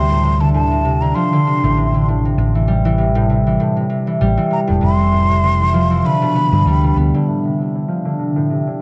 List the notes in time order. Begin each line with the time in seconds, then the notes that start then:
Already playing: D2 C3 C6
0.10 A2
0.23 C3
0.40 D3 A5
0.54 A2 A5
0.71 C3
0.85 C3
1.01 D3 A#5
1.15 F3 C6
1.33 D3
1.47 C3
1.64 A1 A2
1.77 C3
1.94 D3
2.08 A2
2.25 C3
2.38 A1 C3
2.55 E3
2.68 G3
2.85 E3
2.98 C3
3.15 A2
3.30 C3
3.47 E3
3.60 A2
3.77 C3
3.90 C3
4.07 E3
4.21 A1 G3
4.37 E3
4.51 C3 A#5
4.67 E1 A2
4.81 F1 C3 C6
4.99 E3
5.12 A2
5.30 C3
5.44 C3
5.61 E3
5.74 F3
5.91 E3
6.05 D3 B5
6.22 B2
6.35 B3
6.52 G2 D3
6.66 D2 G3
6.84 B2
6.96 D2 B3
7.14 D3
7.28 A2
7.45 C3
7.58 C3
7.75 D3
7.88 F3
8.05 D3
8.19 C3
8.36 A2
8.50 C3
8.67 D3